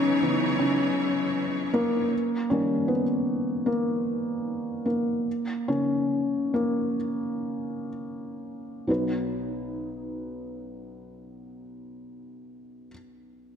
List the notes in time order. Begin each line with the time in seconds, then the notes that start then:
Already playing: C#3 E3 F#3 B3 C#4 D#4 C#5
0.22 C#3 E3 B3
0.59 C#4
1.74 A#3
2.50 D#3 G3 A#3 C#4
2.88 B3
3.66 A#3
4.86 A#3
5.68 C#3 A#3 C#4
6.54 A#3
8.87 B1 F#3 B3 D#4 B4